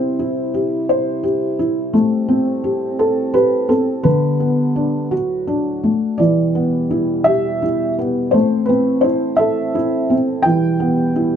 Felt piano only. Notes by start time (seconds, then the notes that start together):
Already playing: C4 C5
0.19 E4
0.54 G4
0.89 C5
1.23 G4
1.59 E4
1.93 A3
2.28 C4
2.64 G4
2.99 A4
3.34 G4 B4
3.69 C4 A4
4.03 D3 B4
4.40 B3
4.76 D4
5.11 F#4
5.47 D4
5.84 A3
6.18 E3 D5
6.55 B3
6.91 E4
7.24 G4 E5
7.62 E4
7.99 B3
8.31 A3 C5
8.66 C4 B4
9.01 E4 C5
9.37 A4 E5
9.75 E4
10.10 C4
10.43 E3 G5
10.80 B3
11.16 E4